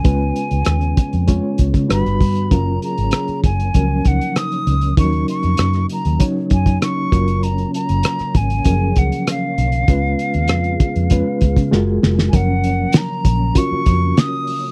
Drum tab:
HH |x-xxxxxxx-xxxxox|x-xxxxxxx-xxxxxx|xxxxxxxxx-xxx-xx|xxxxxxxxx-xxx-xx|
SD |----r-------r---|----r-------r---|----rr------r---|----rr------r---|
BD |o-----o-o-oo--o-|o-----o-o-o-----|o-------o-oo--o-|------o-o-o-----|

HH |x-xxxxxxx-xx----|x-x-x-x-x-x-x-o-|
SD |----r-------o-oo|----o-------o---|
BD |o-----o-o-oo----|o-----o-o-o-----|